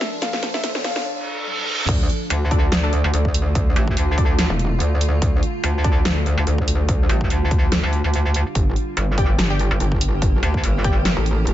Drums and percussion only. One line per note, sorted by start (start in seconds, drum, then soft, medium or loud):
0.01 snare medium
0.22 snare medium
0.22 closed hi-hat medium
0.33 snare medium
0.43 snare medium
0.43 closed hi-hat medium
0.54 snare medium
0.64 snare loud
0.64 closed hi-hat medium
0.75 snare medium
0.84 snare loud
0.84 closed hi-hat medium
0.96 snare medium
1.47 high tom medium
1.58 high tom medium
1.79 mid tom medium
1.89 kick loud
1.89 closed hi-hat medium
1.89 crash loud
2.09 closed hi-hat medium
2.30 closed hi-hat medium
2.51 kick loud
2.51 closed hi-hat medium
2.72 snare loud
2.72 closed hi-hat medium
2.93 closed hi-hat medium
3.14 closed hi-hat medium
3.25 kick medium
3.34 open hi-hat loud
3.55 kick loud
3.55 closed hi-hat medium
3.76 closed hi-hat medium
3.88 kick medium
3.97 closed hi-hat medium
4.18 kick loud
4.18 closed hi-hat medium
4.39 snare loud
4.39 closed hi-hat medium
4.59 closed hi-hat medium
4.80 closed hi-hat medium
5.01 open hi-hat medium
5.22 kick loud
5.22 closed hi-hat medium
5.43 closed hi-hat medium
5.64 closed hi-hat medium
5.84 kick loud
5.84 closed hi-hat medium
6.05 snare loud
6.05 closed hi-hat medium
6.26 closed hi-hat medium
6.47 closed hi-hat medium
6.58 kick medium
6.68 open hi-hat medium
6.89 kick loud
6.89 closed hi-hat medium
7.09 closed hi-hat medium
7.21 kick medium
7.30 closed hi-hat medium
7.51 kick loud
7.51 closed hi-hat medium
7.72 snare loud
7.72 closed hi-hat medium
7.93 closed hi-hat medium
8.14 closed hi-hat medium
8.34 open hi-hat medium
8.55 kick loud
8.55 closed hi-hat medium
8.76 closed hi-hat soft
8.97 closed hi-hat medium
9.18 kick loud
9.18 closed hi-hat soft
9.39 snare loud
9.39 closed hi-hat medium
9.59 closed hi-hat medium
9.80 closed hi-hat medium
9.92 kick medium
10.01 open hi-hat medium
10.22 kick loud
10.22 closed hi-hat medium
10.43 closed hi-hat medium
10.54 kick medium
10.64 closed hi-hat medium
10.84 kick loud
10.84 closed hi-hat medium
11.05 snare loud
11.05 closed hi-hat medium
11.26 closed hi-hat medium
11.47 closed hi-hat medium